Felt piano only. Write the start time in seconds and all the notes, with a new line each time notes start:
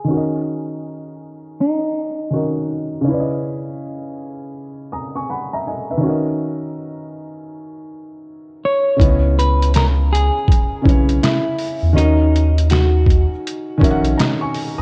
Already playing: E4 D#5
0.04 D#3 C#4
0.10 F#4 A#4
0.17 D#5
2.31 D#3 C#4 F#4
2.35 A#4 D#5
3.01 C#3 C#4
3.08 E4 B4
3.13 D5
3.20 D#5
4.92 A#5 D#6
5.15 G#5 C#6
5.30 F#5 B5
5.53 E5 A#5
5.67 D#5 G#5
5.90 B4 E5
5.97 D#3 C#4
6.03 F#4 A#4
6.10 D#5
8.97 C#3 C#4 E4
9.01 B3 D#5
10.82 C#3 C#4 E4
10.86 B4 C#5
11.93 D#3 C#4 F#4
11.97 A#4 D#5
13.78 D#3 C#4 F#4
13.82 A#4 E5
13.91 F#5
14.18 D#5 A#5
14.41 G#5 C#6
14.78 A#5 D#6